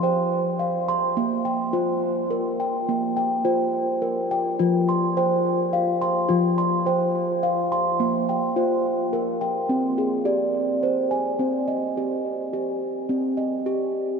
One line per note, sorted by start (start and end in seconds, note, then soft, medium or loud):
0.00 1.15 F3 medium
0.00 0.61 C5 medium
0.00 0.90 G5 medium
0.00 0.61 C6 medium
0.59 1.18 F5 medium
0.88 1.46 C6 medium
1.17 1.75 A#3 medium
1.45 2.31 G5 medium
1.73 2.31 F4 medium
1.73 2.60 C5 medium
2.31 2.88 A#4 medium
2.60 3.15 G5 medium
2.89 3.46 A#3 medium
3.17 4.02 G5 medium
3.45 4.02 F4 medium
3.45 4.31 C5 medium
4.02 4.59 A#4 medium
4.31 4.88 G5 medium
4.59 6.26 F3 medium
4.59 5.16 F4 medium
4.89 5.73 C6 medium
5.17 5.73 C5 medium
5.17 6.02 G5 medium
5.73 6.30 F5 medium
6.02 6.57 C6 medium
6.29 7.96 F3 medium
6.29 6.86 F4 loud
6.58 7.43 C6 medium
6.86 7.43 C5 medium
6.86 7.71 G5 medium
7.43 8.00 F5 medium
7.72 8.28 C6 medium
8.00 9.66 A#3 medium
8.29 9.13 G5 medium
8.56 9.13 F4 medium
8.56 9.41 C5 medium
9.13 9.69 A#4 medium
9.41 9.98 G5 medium
9.69 11.36 C4 medium
9.98 10.83 G#4 medium
10.25 10.82 G4 medium
10.25 11.11 D5 medium
10.83 11.39 C5 medium
11.11 11.67 G#5 medium
11.39 11.96 C4 medium
11.68 12.52 D#5 medium
11.97 12.52 G4 medium
12.53 13.10 G4 medium
13.09 13.66 C4 medium
13.37 14.20 D#5 medium
13.66 14.20 G4 medium